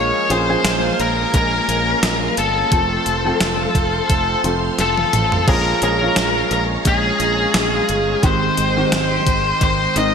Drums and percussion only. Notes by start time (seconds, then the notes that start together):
0.30 closed hi-hat
0.65 snare, closed hi-hat
1.00 closed hi-hat
1.34 kick, closed hi-hat
1.69 closed hi-hat
2.03 snare, closed hi-hat
2.37 closed hi-hat
2.72 kick, closed hi-hat
3.06 closed hi-hat
3.40 snare, closed hi-hat
3.75 kick, closed hi-hat
4.09 kick, closed hi-hat
4.44 closed hi-hat
4.78 snare, closed hi-hat
4.98 high tom
5.13 closed hi-hat, mid tom
5.32 floor tom
5.48 kick, crash
5.82 closed hi-hat
6.16 snare, closed hi-hat
6.51 closed hi-hat
6.85 kick, closed hi-hat
7.20 closed hi-hat
7.54 snare, closed hi-hat
7.89 closed hi-hat
8.23 kick, closed hi-hat
8.57 closed hi-hat
8.92 snare, closed hi-hat
9.27 kick, closed hi-hat
9.61 kick, closed hi-hat
9.96 closed hi-hat